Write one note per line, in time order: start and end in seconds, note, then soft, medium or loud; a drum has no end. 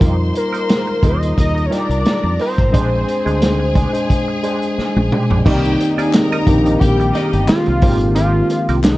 0.00 0.31 F2 medium
0.00 0.88 G3 medium
0.00 0.15 A#3 medium
0.00 0.15 D#4 medium
0.00 0.88 D#4 medium
0.00 0.88 F4 medium
0.00 0.16 G4 medium
0.00 0.89 A#4 loud
0.00 1.34 C5 loud
0.00 1.34 C6 loud
0.00 kick loud
0.00 closed hi-hat medium
0.34 1.08 A#4 loud
0.34 muted clean electric guitar stroke soft
0.34 closed hi-hat medium
0.53 0.64 A#3 soft
0.53 0.64 D#4 medium
0.53 0.63 A#4 medium
0.53 closed hi-hat soft
0.68 muted clean electric guitar stroke soft
0.68 snare loud
0.68 closed hi-hat medium
0.87 muted clean electric guitar stroke soft
1.03 1.33 D#2 medium
1.03 1.61 G3 medium
1.03 1.18 A#3 medium
1.03 1.61 D#4 medium
1.03 1.18 D#4 medium
1.03 1.62 F4 medium
1.03 1.11 G#4 medium
1.03 1.19 A#4 medium
1.03 1.39 D#5 medium
1.03 kick loud
1.03 closed hi-hat medium
1.10 1.65 A#4 medium
1.23 closed hi-hat medium
1.36 1.67 D#2 medium
1.36 2.70 A#4 medium
1.36 1.67 D#5 loud
1.36 2.71 A#5 medium
1.36 muted clean electric guitar stroke soft
1.36 kick medium
1.36 closed hi-hat medium
1.55 muted clean electric guitar stroke soft
1.55 closed hi-hat soft
1.66 1.74 C#5 medium
1.70 2.58 G3 medium
1.70 1.86 A#3 medium
1.70 2.58 D#4 medium
1.70 1.86 D#4 medium
1.70 2.58 F4 medium
1.70 1.87 G4 medium
1.70 2.58 A#4 medium
1.70 2.40 D5 loud
1.70 snare soft
1.70 closed hi-hat medium
1.89 2.03 C2 medium
1.89 closed hi-hat soft
2.06 snare loud
2.06 closed hi-hat medium
2.24 2.37 F2 medium
2.24 muted clean electric guitar stroke soft
2.39 2.54 A#3 medium
2.39 2.55 D#4 medium
2.39 2.55 G4 medium
2.39 4.74 C5 loud
2.39 open hi-hat medium
2.58 2.72 G#1 loud
2.58 kick medium
2.58 closed hi-hat soft
2.72 3.03 A#1 loud
2.72 3.16 G#3 medium
2.72 2.88 G#3 medium
2.72 3.17 D4 medium
2.72 2.89 D4 medium
2.72 2.89 G4 medium
2.72 3.17 G#4 medium
2.72 5.42 G#4 loud
2.72 3.17 C5 loud
2.72 5.42 G#5 loud
2.72 kick loud
2.72 closed hi-hat medium
3.08 muted clean electric guitar stroke soft
3.08 closed hi-hat medium
3.26 3.85 D2 medium
3.26 3.82 G#3 loud
3.26 3.36 G#3 soft
3.26 3.83 D4 medium
3.26 3.36 D4 soft
3.26 3.36 G#4 medium
3.26 3.83 G#4 medium
3.26 3.83 C5 loud
3.26 closed hi-hat soft
3.42 snare loud
3.42 closed hi-hat loud
3.60 muted clean electric guitar stroke soft
3.75 3.90 G#3 medium
3.75 3.91 D4 medium
3.75 3.91 G#4 medium
3.75 kick loud
3.75 closed hi-hat medium
3.93 4.36 G#3 medium
3.93 4.36 D4 medium
3.93 4.36 G#4 medium
3.93 4.36 C5 medium
3.93 closed hi-hat medium
4.10 muted clean electric guitar stroke soft
4.10 kick medium
4.10 closed hi-hat medium
4.28 muted clean electric guitar stroke soft
4.43 4.58 G#3 medium
4.43 5.31 G#3 medium
4.43 5.31 D4 medium
4.43 4.59 D4 medium
4.43 4.59 G4 medium
4.43 5.31 G#4 medium
4.43 5.31 C5 medium
4.43 closed hi-hat medium
4.62 muted clean electric guitar stroke soft
4.62 closed hi-hat soft
4.78 muted clean electric guitar stroke soft
4.78 muted fingered electric bass stroke soft
4.78 snare medium
4.96 5.10 A#1 medium
4.96 muted clean electric guitar stroke soft
4.96 high tom medium
5.12 5.23 G#3 medium
5.12 5.24 D4 medium
5.12 5.24 G4 medium
5.12 mid tom medium
5.30 5.44 A#1 medium
5.30 5.40 G#3 soft
5.30 5.40 D4 soft
5.30 5.40 G4 medium
5.30 floor tom medium
5.45 5.75 C2 loud
5.45 5.89 D#3 loud
5.45 5.89 A#3 medium
5.45 5.89 C4 loud
5.45 5.60 D#4 medium
5.45 6.81 D#4 loud
5.45 5.94 G4 loud
5.45 5.90 G4 loud
5.45 5.60 A#4 medium
5.45 5.89 D5 medium
5.45 5.61 D5 loud
5.45 5.94 G5 loud
5.45 kick loud
5.45 crash loud
5.65 closed hi-hat soft
5.80 muted clean electric guitar stroke soft
5.80 closed hi-hat medium
5.97 6.40 D#3 medium
5.97 6.40 A#3 medium
5.97 6.40 C4 medium
5.97 6.08 D#4 medium
5.97 6.40 G4 medium
5.97 6.11 G#4 loud
5.97 6.08 A#4 medium
5.97 6.08 D5 medium
5.97 6.40 D5 medium
5.97 6.10 G#5 loud
5.97 closed hi-hat medium
6.12 6.77 A#4 loud
6.12 6.77 A#5 loud
6.12 muted clean electric guitar stroke soft
6.12 snare loud
6.12 clap medium
6.12 closed hi-hat medium
6.32 6.45 D#4 medium
6.32 6.45 A#4 medium
6.32 6.45 D#5 medium
6.32 closed hi-hat soft
6.46 6.76 A#1 medium
6.46 6.62 D#3 medium
6.46 6.62 A#3 medium
6.46 6.62 C4 medium
6.46 6.62 D4 medium
6.46 6.63 G4 medium
6.46 muted clean electric guitar stroke soft
6.46 kick loud
6.46 closed hi-hat medium
6.65 7.78 D#3 medium
6.65 7.79 A#3 medium
6.65 7.79 C4 medium
6.65 7.79 D#4 medium
6.65 7.79 G4 medium
6.65 muted clean electric guitar stroke soft
6.65 closed hi-hat medium
6.79 7.11 A#1 loud
6.79 7.47 G4 loud
6.79 7.08 G4 loud
6.79 7.07 G5 loud
6.79 muted clean electric guitar stroke soft
6.79 kick medium
6.79 closed hi-hat medium
7.00 muted clean electric guitar stroke soft
7.00 closed hi-hat soft
7.14 7.41 D#4 medium
7.14 7.30 D#4 medium
7.14 7.30 A#4 medium
7.14 7.31 D5 medium
7.14 7.42 D#5 medium
7.14 snare soft
7.14 closed hi-hat medium
7.33 7.47 G1 loud
7.33 muted clean electric guitar stroke soft
7.33 closed hi-hat medium
7.48 8.12 F4 loud
7.48 muted clean electric guitar stroke soft
7.48 muted fingered electric bass stroke soft
7.48 snare loud
7.48 clap medium
7.48 closed hi-hat medium
7.66 7.81 C2 medium
7.66 muted clean electric guitar stroke soft
7.66 closed hi-hat soft
7.82 8.41 G#1 loud
7.82 8.97 D#3 medium
7.82 8.98 G#3 medium
7.82 8.98 A#3 medium
7.82 7.97 C4 medium
7.82 8.98 C4 medium
7.82 7.90 F4 medium
7.82 7.98 G4 medium
7.82 7.98 A#4 medium
7.82 kick loud
7.82 open hi-hat medium
7.89 8.98 G4 loud
8.01 closed hi-hat medium
8.15 8.31 C4 medium
8.15 8.80 F4 loud
8.15 8.32 G4 medium
8.15 8.32 A#4 medium
8.15 closed hi-hat loud
8.50 muted clean electric guitar stroke soft
8.50 closed hi-hat medium
8.69 8.98 C2 medium
8.69 8.80 C4 medium
8.69 8.79 G4 medium
8.69 8.79 A#4 medium
8.69 closed hi-hat soft
8.84 8.98 D#4 medium
8.84 muted clean electric guitar stroke soft
8.84 snare loud
8.84 clap loud
8.84 closed hi-hat loud